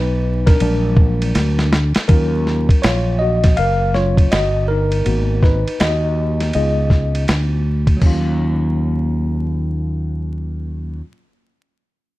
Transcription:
Already playing: fretless electric bass B1, tine electric piano D#4 B4
0.46 tine electric piano D4 A#4, kick, snare, ride
0.60 fretless electric bass A#1, tine electric piano F#3 G#3 D4, ride
0.97 kick
1.22 ride
1.35 fretless electric bass D2, snare, hi-hat pedal, ride
1.59 snare
1.73 snare
1.95 muted fretless electric bass stroke, snare, ride
2.08 fretless electric bass D#2, tine electric piano F#3 C#4 F4 A#4, kick, ride
2.47 snare
2.69 muted fretless electric bass stroke, kick, ride
2.82 fretless electric bass A#1, tine electric piano F4 C#5, snare, hi-hat pedal, ride
3.19 tine electric piano F#4 D#5
3.44 kick, snare, ride
3.57 fretless electric bass F#1, tine electric piano A#4 F5, ride
3.94 tine electric piano F#3 C#4 F4 C#5, snare
4.17 kick, ride
4.32 fretless electric bass G1, tine electric piano F#4 D#5, snare, hi-hat pedal, ride
4.68 tine electric piano D#4 A#4
4.92 ride
5.05 fretless electric bass G#1, tine electric piano A#3 B3 F#4, ride
5.43 tine electric piano D#4 B4, kick, snare
5.68 ride
5.80 fretless electric bass D#2, tine electric piano F#4 D#5, snare, hi-hat pedal, ride
6.40 snare, ride
6.53 fretless electric bass C#2, tine electric piano B3 D#4 F4 G#4 D#5, ride
6.90 kick, snare
7.15 ride
7.28 fretless electric bass D2, snare, hi-hat pedal, ride
7.87 kick, ride
7.97 tine electric piano F#3 A#3
8.02 fretless electric bass D#2, tine electric piano C#4, kick, crash
8.06 tine electric piano F4

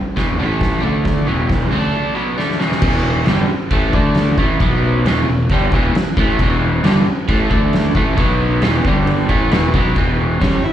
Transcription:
0.16 fingered electric bass E1, overdriven electric guitar E2 B2 E3, kick, snare, floor tom
0.38 fingered electric bass A1, overdriven electric guitar A2 E3 A3, floor tom
0.61 kick, snare, floor tom
0.82 fingered electric bass D2, overdriven electric guitar D3 A3 D4, floor tom
1.05 kick, snare, floor tom
1.26 fingered electric bass E1, overdriven electric guitar E2 B2 E3, floor tom
1.50 kick, snare, floor tom
1.70 fingered electric bass D2, overdriven electric guitar D3 A3 D4, floor tom
2.14 overdriven electric guitar B2 F#3 B3
2.37 overdriven electric guitar D3 A3 D4, snare
2.51 snare
2.59 overdriven electric guitar E2 B2 E3, snare
2.72 snare
2.82 fingered electric bass E1, overdriven electric guitar E2 B2 E3, kick, crash
3.26 fingered electric bass G1, overdriven electric guitar G2 D3 G3, snare, crash
3.50 muted fingered electric bass stroke, muted overdriven electric guitar stroke
3.71 fingered electric bass A1, overdriven electric guitar A2 E3 A3, kick, crash
3.93 fingered electric bass D2, overdriven electric guitar D3 A3 D4, kick
4.15 snare, crash
4.37 fingered electric bass A1, overdriven electric guitar A2 E3 A3, kick
4.60 fingered electric bass B1, overdriven electric guitar B2 F#3 B3, kick, crash
5.05 fingered electric bass E1, overdriven electric guitar E2 B2 E3, snare, crash
5.28 fingered electric bass E1, overdriven electric guitar E2 B2
5.49 fingered electric bass G1, overdriven electric guitar G2 D3 G3, kick, crash
5.72 fingered electric bass E1, overdriven electric guitar E2 B2 E3, kick
5.95 muted fingered electric bass stroke, muted overdriven electric guitar stroke, snare, crash
6.17 fingered electric bass A1, overdriven electric guitar A2 E3 A3, kick
6.39 fingered electric bass E1, overdriven electric guitar E2 B2 E3, kick, crash
6.84 fingered electric bass G1, overdriven electric guitar G2 D3 G3, snare, crash
7.06 muted fingered electric bass stroke, muted overdriven electric guitar stroke
7.28 fingered electric bass A1, overdriven electric guitar A2 E3 A3, kick, crash
7.51 fingered electric bass D2, overdriven electric guitar D3 A3 D4, kick
7.73 snare, crash
7.95 fingered electric bass A1, overdriven electric guitar A2 E3 A3, kick
8.18 fingered electric bass B1, overdriven electric guitar B2 F#3 B3, kick, crash
8.62 fingered electric bass E1, overdriven electric guitar E2 B2 E3, snare, crash
8.85 fingered electric bass G1, overdriven electric guitar G2 D3 G3, kick
9.07 crash
9.29 fingered electric bass A1, overdriven electric guitar A2 E3 A3, kick
9.51 fingered electric bass E1, overdriven electric guitar E2 B2 E3, snare, crash
9.73 fingered electric bass B1, overdriven electric guitar B2 F#3 B3, kick
9.96 fingered electric bass E1, overdriven electric guitar E2 B2 E3, kick, crash
10.41 fingered electric bass G1, overdriven electric guitar G2 D3 G3, transistor combo organ C#4, kick, snare, crash
10.64 transistor combo organ E4, muted fingered electric bass stroke, muted overdriven electric guitar stroke

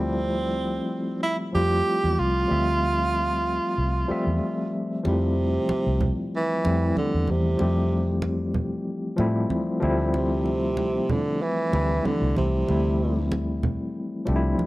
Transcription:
Already playing: fingered electric bass D2, tine electric piano F3 G3 A3 C4 E4, tenor saxophone C4
1.23 tenor saxophone E4
1.53 fingered electric bass F2, tine electric piano F3 G3 A3 C4 F4, tenor saxophone G4
2.04 fingered electric bass E2
2.19 fingered electric bass C2, tenor saxophone F4
2.47 fingered electric bass D2, tine electric piano F3 G3 A3 C4
2.52 tine electric piano E5
3.78 fingered electric bass C2
4.08 tine electric piano F3 G3 A3 C4 E5, muted fingered electric bass stroke
4.27 fingered electric bass E2
5.03 fingered electric bass F2, tenor saxophone C3, tine electric piano F3 G3 G#3 C4 E4, muted conga
5.12 tine electric piano A3
5.69 muted fingered electric bass stroke, high conga
5.87 fingered electric bass C2
6.01 low conga
6.36 tenor saxophone E3
6.63 fingered electric bass F2, tine electric piano E3 G3 A3 C4 E4, muted conga
6.97 tenor saxophone D3, high conga
7.14 fingered electric bass E2
7.27 fingered electric bass E2, tenor saxophone C3, high conga
7.57 tine electric piano F3 G3 A3 C4, muted conga
7.61 fingered electric bass F2, tine electric piano G4
8.22 high conga
8.54 low conga
9.16 fingered electric bass A2, tine electric piano F3 G3 A3 C4, muted conga
9.20 tine electric piano E4
9.50 high conga
9.80 fingered electric bass D2, tine electric piano F3 G3 A3 C4, high conga
9.84 tine electric piano E4
10.14 tenor saxophone C3, muted conga
10.46 muted conga
10.77 high conga
11.09 tenor saxophone D3, low conga
11.42 tenor saxophone E3
11.71 fingered electric bass D2, tine electric piano E3 G3 A3 C4 E4, muted conga
12.05 tenor saxophone D3, high conga
12.22 fingered electric bass C2
12.36 fingered electric bass C2, tenor saxophone C3, high conga
12.67 fingered electric bass D2, tine electric piano F3 G3 A3 C4 E4, muted conga
13.32 high conga
13.63 low conga
14.25 fingered electric bass C2, tine electric piano F3 G3 A3 C4 D4, muted conga
14.36 tine electric piano E4
14.59 high conga

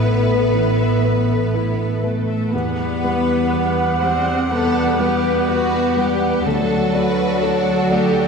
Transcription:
Already playing: double bass section A1, felt piano A2 B3 E4 B4, harp A2 A3 E4 A4 D5, cello section B3, french horn section B3, clarinet A4, violin section B4, flute section E5
0.02 harp E3, felt piano B3 B4, viola section E4
0.27 viola section A4
0.52 harp E3, felt piano E3, viola section B4
0.79 viola section E5
1.03 felt piano B3 B4, harp E4, viola section B4
1.29 viola section A4
1.53 harp E4, viola section E4, felt piano E4 B4
1.79 viola section A4
2.02 harp E3, cello section A3, french horn section A3, felt piano B3 B4, violin section A4, viola section B4
2.28 viola section E5
2.52 double bass section E2, felt piano E2, harp E3, viola section G3 F#5, cello section B3, french horn section B3, clarinet G4, violin section B4, flute section F#5
2.79 harp G3
3.04 felt piano G3 B4, harp F#5
3.54 felt piano B4 F#5
4.02 felt piano G3 G4, harp G3, cello section C4, french horn section C4, violin section C5
4.27 harp E4
4.50 felt piano B2, harp G3, cello section B3, french horn section B3, violin section A4 B4
4.75 harp E4
5.00 felt piano G3 B4, violin section G4
5.48 violin section F#4, felt piano B4 F#5
5.97 felt piano G3 B4, harp G3, violin section G4
6.21 harp E4
6.45 double bass section D2, felt piano D2, harp D3, cello section F#3, french horn section F#3, viola section D4 A4, violin section F#4 A4, clarinet A4, flute section D5
6.70 harp A3
6.94 felt piano A3 D5, violin section B4
7.18 harp D5
7.42 felt piano F#4 D5, harp A4, violin section A4
7.91 harp A3, felt piano A3 D5, violin section G4
8.15 harp D4

